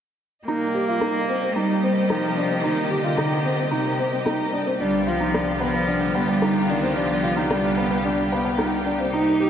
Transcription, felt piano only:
0.48 0.63 D#4 medium
0.75 0.82 G4 medium
0.88 0.96 F4 medium
1.01 1.16 D#4 medium
1.29 1.36 C4 medium
1.42 1.49 C4 medium
1.56 1.71 D#4 medium
1.83 1.91 C4 medium
1.97 2.04 C4 medium
2.10 2.25 D#4 medium
2.37 2.45 D4 medium
2.50 2.58 C4 medium
2.64 2.79 D#4 medium
2.91 2.98 G4 medium
3.04 3.12 F4 medium
3.17 3.33 D#4 medium
3.45 3.53 C4 medium
3.58 3.66 C4 medium
3.71 3.87 D#4 medium
3.99 4.06 C4 medium
4.12 4.20 C4 medium
4.26 4.41 D#4 medium
4.53 4.60 D4 medium
4.67 4.74 C4 medium
4.80 4.95 D4 medium
5.07 5.14 F4 medium
5.20 5.28 D#4 medium
5.33 5.49 D4 medium
5.60 5.68 B3 medium
5.73 5.81 B3 medium
5.87 6.03 D4 medium
6.15 6.22 B3 medium
6.28 6.36 B3 medium
6.42 6.57 D#4 medium
6.69 6.77 D4 medium
6.83 6.90 C4 medium
6.96 7.11 D4 medium
7.23 7.31 F4 medium
7.37 7.44 D#4 medium
7.50 7.65 D4 medium
7.77 7.85 B3 medium
7.90 7.98 B3 medium
8.05 8.20 D4 medium
8.32 8.40 B3 medium
8.45 8.52 B3 medium
8.58 8.73 D#4 medium
8.86 8.93 D4 medium
8.99 9.07 C4 medium
9.13 9.28 D#4 medium
9.40 9.47 G4 medium

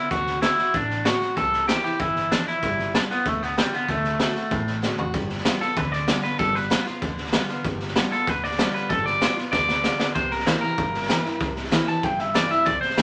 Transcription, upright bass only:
0.11 0.44 D2 medium
0.74 1.07 A1 medium
1.21 muted upright bass stroke medium
1.36 1.70 C2 medium
1.84 muted upright bass stroke medium
1.99 2.33 G1 medium
2.46 muted upright bass stroke medium
2.63 2.96 G1 medium
3.09 muted upright bass stroke medium
3.26 3.59 D2 medium
3.88 4.21 D2 medium
4.35 muted upright bass stroke medium
4.51 4.84 A1 medium
5.13 5.47 G1 medium
5.61 muted upright bass stroke medium
5.76 6.09 D2 medium
6.23 muted upright bass stroke medium
6.39 6.72 G1 medium
6.86 muted upright bass stroke medium
7.02 7.35 D2 medium
7.65 7.98 G1 medium
8.11 muted upright bass stroke medium
8.27 8.60 D2 medium
8.74 muted upright bass stroke medium
8.90 9.23 G1 medium
9.37 muted upright bass stroke medium
9.52 9.86 D2 medium
9.99 muted upright bass stroke medium
10.15 10.48 C2 medium
10.62 muted upright bass stroke medium
10.78 11.11 G1 medium
11.25 muted upright bass stroke medium
11.41 11.74 C2 medium
11.87 muted upright bass stroke medium
12.03 12.37 G1 medium
12.50 muted upright bass stroke medium
12.66 12.77 C2 medium
12.82 muted upright bass stroke medium
12.98 13.02 C2 medium

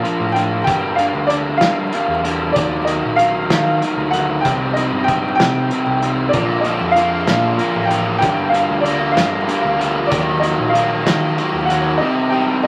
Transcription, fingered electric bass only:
0.20 0.64 A2 medium
0.67 1.11 G2 medium
1.14 1.58 D2 medium
1.62 1.91 G3 medium
2.08 2.53 E2 medium
2.56 3.00 D#2 medium
3.04 3.48 A#1 medium
3.50 3.79 D#3 medium
3.97 4.41 D2 medium
4.45 4.89 C2 medium
4.92 5.36 G2 medium
5.39 5.69 C3 medium
5.86 6.31 C2 medium
6.33 6.78 A#1 medium
6.81 7.25 F2 medium
7.29 7.58 A#2 medium
7.75 8.20 A1 medium
8.23 8.67 G1 medium
8.70 9.14 D2 medium
9.17 9.47 G2 medium
9.64 10.09 D2 medium
10.12 10.56 D#2 medium
10.59 11.04 A#1 medium
11.06 11.36 D#3 medium
11.53 11.98 D#2 medium

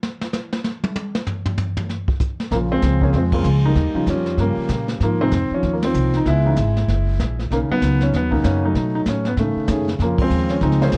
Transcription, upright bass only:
2.51 2.82 A#1 medium
2.82 3.12 C#2 medium
3.13 3.44 F2 medium
3.44 3.75 C#2 medium
3.75 3.94 D#2 medium
3.94 muted upright bass stroke soft
4.07 4.37 F2 medium
4.37 4.56 G2 medium
4.57 muted upright bass stroke soft
4.69 5.00 A#2 medium
5.00 5.31 G#2 medium
5.31 5.50 F2 medium
5.50 muted upright bass stroke soft
5.63 5.93 D#2 medium
5.94 6.25 C2 medium
6.25 6.56 C#2 medium
6.57 6.87 G#1 medium
6.88 7.18 F#1 medium
7.20 7.50 A#1 medium
7.51 7.68 B1 medium
7.70 muted upright bass stroke soft
7.81 8.12 C#2 medium
8.13 8.43 D#2 medium
8.44 8.74 F#2 loud
8.75 9.05 B2 medium
9.06 9.36 A2 medium
9.37 9.55 G#2 medium
9.56 muted upright bass stroke soft
9.68 9.98 F#2 loud
9.99 10.29 F2 medium
10.30 10.60 D#2 medium
10.61 10.92 C#2 medium
10.92 10.97 C2 medium

